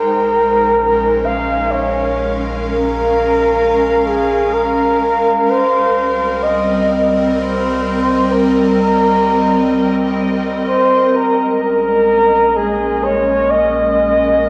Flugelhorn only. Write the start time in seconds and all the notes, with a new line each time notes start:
Already playing: A#4
1.26 F5
1.71 C#5
2.65 A#4
4.07 G#4
4.54 A#4
5.50 C5
6.43 D#5
7.39 C5
8.32 A#4
10.68 C5
11.15 A#4
11.63 A#4
12.57 G#4
13.04 C#5
13.50 D#5